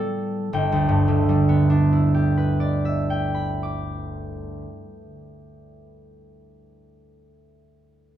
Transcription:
Already playing: A2 G3 B3 A4 B4 C#5 A5 B5 C#6
0.53 G1 G5
0.72 D2
0.89 G2
1.08 D3
1.29 G3
1.49 B3
1.70 D4
1.93 E4
2.14 G4
2.37 B4
2.60 D5
2.85 E5
3.10 G5
3.35 B5
3.63 D6

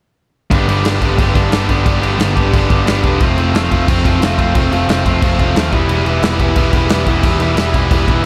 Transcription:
0.50 G1 G2 D3 G3 B3 D4 G4, kick, crash
0.68 G1 G2 D3 G3 B3 D4 G4, crash
0.85 G1 G2 D3 G3 B3 D4 G4, snare, crash
1.01 G1 G2 D3 G3 B3 D4 G4, kick, crash
1.18 G1 G2 D3 G3 B3 D4 G4, kick, crash
1.34 G1 G2 D3 G3 B3 D4 G4, kick, crash
1.51 G1 G2 D3 G3 B3 D4 G4, snare, crash
1.68 G1 G2 D3 G3 B3 D4 G4, kick, crash
1.85 G1 G2 D3 G3 B3 D4 G4, kick, crash
2.01 G1 G2 D3 G3 B3 D4 G4, crash
2.18 G1 G2 D3 G3 B3 D4 G4, snare, crash
2.36 G1 G2 D3 G3 B3 D4 G4, kick, crash
2.53 G1 G2 D3 G3 B3 D4 G4, kick, crash
2.69 G1 G2 D3 G3 B3 D4 G4, kick, crash
2.87 G1 G2 D3 G3 B3 D4 G4, snare, crash
3.03 E1 G2 D3 G3 B3 D4 G4, kick, crash
3.20 F1 F3 A3 C4 F4, kick, crash
3.38 F1 F3 A3 C4 F4, crash
3.55 F1 F3 A3 C4 F4, snare, crash
3.71 F1 F3 A3 C4 F4, kick, crash
3.88 F1 F3 A3 C4 F4, kick, crash
4.05 F1 F3 A3 C4 F4, kick, crash
4.21 F1 F3 A3 C4 F4, snare, crash
4.38 F1 F3 A3 C4 F4, kick, crash
4.54 F1 F3 A3 C4 F4, kick, crash
4.71 F1 F3 A3 C4 F4, crash
4.88 F1 F3 A3 C4 F4, snare, crash
5.04 F1 F3 A3 C4 F4, kick, crash
5.22 F1 F3 A3 C4 F4, kick, crash
5.39 F1 F3 A3 C4 F4, kick, crash
5.54 D#2 F3 A3 C4 F4, snare, crash
5.72 E1 E3 G3 B3 E4, kick, crash
5.88 E1 E3 G3 B3 E4, crash
6.05 E1 E3 G3 B3 E4, crash
6.21 E1 E3 G3 B3 E4, snare, crash
6.39 E1 E3 G3 B3 E4, kick, crash
6.56 E1 E3 G3 B3 E4, kick, crash
6.72 E1 E3 G3 B3 E4, kick, crash
6.89 E1 E3 G3 B3 E4, snare, crash
7.06 E1 E3 G3 B3 E4, kick, crash
7.23 E1 E3 G3 B3 E4, kick, crash
7.39 E1 E3 G3 B3 E4, crash
7.56 E1 E3 G3 B3 E4, snare, crash
7.73 E1 E3 G3 B3 E4, kick, crash
7.90 E1 E3 G3 B3 E4, kick, crash
8.07 E1 E3 G3 B3 E4, kick, crash

